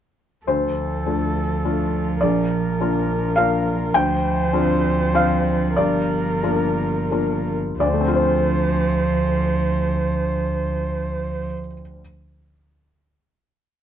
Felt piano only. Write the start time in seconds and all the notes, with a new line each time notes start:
0.47 D2 C5
1.06 A3 D4 F4
1.65 A3 D4 F4
2.21 A#1 D5
2.80 A#3 D4 F4
3.36 A#3 D4 F4 F5
3.94 D2 G5
4.53 C4 D4 F4
5.14 C4 D4 F4 F5
5.76 G2 D5
6.43 A#3 D4 F4
7.11 A#3 D4 F4
7.80 D2 D5
7.87 D3
7.94 A3
8.01 C4
8.08 F4
8.15 C5